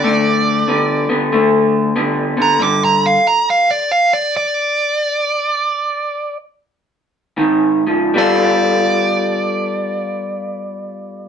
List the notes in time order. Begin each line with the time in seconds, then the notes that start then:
Already playing: D5
0.04 D3 A3
0.68 D3 B3
1.09 D3 B3
1.32 D3 A3
1.96 D3 B3
2.37 D3 B3
2.42 A#5
2.59 G2 D3 D6
2.85 A#5
3.06 F5
3.27 A#5
3.50 F5
3.71 D5
3.92 F5
4.13 D5
4.37 D5
7.37 G#2 D#3
7.87 G#2 F3
8.14 G3 B3 F4 A4
8.18 D5